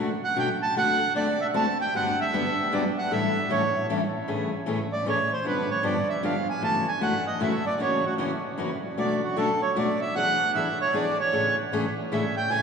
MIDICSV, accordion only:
0, 0, Header, 1, 2, 480
1, 0, Start_track
1, 0, Tempo, 391645
1, 919, Time_signature, 3, 2, 24, 8
1, 15470, End_track
2, 0, Start_track
2, 0, Title_t, "Accordion"
2, 0, Program_c, 0, 21
2, 296, Note_on_c, 0, 78, 92
2, 461, Note_off_c, 0, 78, 0
2, 477, Note_on_c, 0, 79, 91
2, 605, Note_off_c, 0, 79, 0
2, 766, Note_on_c, 0, 81, 95
2, 919, Note_off_c, 0, 81, 0
2, 955, Note_on_c, 0, 78, 106
2, 1384, Note_off_c, 0, 78, 0
2, 1425, Note_on_c, 0, 74, 100
2, 1723, Note_off_c, 0, 74, 0
2, 1729, Note_on_c, 0, 76, 95
2, 1802, Note_off_c, 0, 76, 0
2, 1910, Note_on_c, 0, 81, 95
2, 2177, Note_off_c, 0, 81, 0
2, 2220, Note_on_c, 0, 79, 90
2, 2382, Note_off_c, 0, 79, 0
2, 2400, Note_on_c, 0, 78, 98
2, 2690, Note_off_c, 0, 78, 0
2, 2710, Note_on_c, 0, 76, 92
2, 3357, Note_on_c, 0, 74, 80
2, 3360, Note_off_c, 0, 76, 0
2, 3484, Note_off_c, 0, 74, 0
2, 3657, Note_on_c, 0, 78, 87
2, 3820, Note_off_c, 0, 78, 0
2, 3825, Note_on_c, 0, 76, 97
2, 4302, Note_on_c, 0, 73, 70
2, 4304, Note_off_c, 0, 76, 0
2, 4736, Note_off_c, 0, 73, 0
2, 6035, Note_on_c, 0, 74, 75
2, 6199, Note_off_c, 0, 74, 0
2, 6233, Note_on_c, 0, 73, 72
2, 6509, Note_off_c, 0, 73, 0
2, 6531, Note_on_c, 0, 72, 73
2, 6687, Note_off_c, 0, 72, 0
2, 6704, Note_on_c, 0, 71, 73
2, 6984, Note_off_c, 0, 71, 0
2, 6994, Note_on_c, 0, 73, 71
2, 7158, Note_off_c, 0, 73, 0
2, 7165, Note_on_c, 0, 74, 73
2, 7454, Note_off_c, 0, 74, 0
2, 7467, Note_on_c, 0, 76, 79
2, 7635, Note_off_c, 0, 76, 0
2, 7656, Note_on_c, 0, 77, 65
2, 7940, Note_off_c, 0, 77, 0
2, 7963, Note_on_c, 0, 80, 82
2, 8123, Note_off_c, 0, 80, 0
2, 8136, Note_on_c, 0, 81, 92
2, 8420, Note_off_c, 0, 81, 0
2, 8436, Note_on_c, 0, 80, 74
2, 8599, Note_off_c, 0, 80, 0
2, 8609, Note_on_c, 0, 78, 86
2, 8896, Note_off_c, 0, 78, 0
2, 8911, Note_on_c, 0, 75, 78
2, 9076, Note_off_c, 0, 75, 0
2, 9090, Note_on_c, 0, 76, 79
2, 9377, Note_off_c, 0, 76, 0
2, 9394, Note_on_c, 0, 74, 86
2, 9558, Note_off_c, 0, 74, 0
2, 9581, Note_on_c, 0, 73, 71
2, 9862, Note_off_c, 0, 73, 0
2, 9878, Note_on_c, 0, 66, 68
2, 9979, Note_off_c, 0, 66, 0
2, 11018, Note_on_c, 0, 74, 83
2, 11301, Note_off_c, 0, 74, 0
2, 11317, Note_on_c, 0, 66, 57
2, 11480, Note_off_c, 0, 66, 0
2, 11490, Note_on_c, 0, 69, 78
2, 11777, Note_off_c, 0, 69, 0
2, 11788, Note_on_c, 0, 73, 78
2, 11955, Note_off_c, 0, 73, 0
2, 11979, Note_on_c, 0, 74, 71
2, 12261, Note_off_c, 0, 74, 0
2, 12272, Note_on_c, 0, 76, 82
2, 12437, Note_off_c, 0, 76, 0
2, 12446, Note_on_c, 0, 78, 109
2, 12887, Note_off_c, 0, 78, 0
2, 12934, Note_on_c, 0, 76, 79
2, 13219, Note_off_c, 0, 76, 0
2, 13252, Note_on_c, 0, 73, 89
2, 13407, Note_off_c, 0, 73, 0
2, 13421, Note_on_c, 0, 74, 78
2, 13702, Note_off_c, 0, 74, 0
2, 13731, Note_on_c, 0, 73, 88
2, 14162, Note_off_c, 0, 73, 0
2, 14856, Note_on_c, 0, 76, 76
2, 15140, Note_off_c, 0, 76, 0
2, 15160, Note_on_c, 0, 79, 96
2, 15321, Note_off_c, 0, 79, 0
2, 15323, Note_on_c, 0, 80, 98
2, 15470, Note_off_c, 0, 80, 0
2, 15470, End_track
0, 0, End_of_file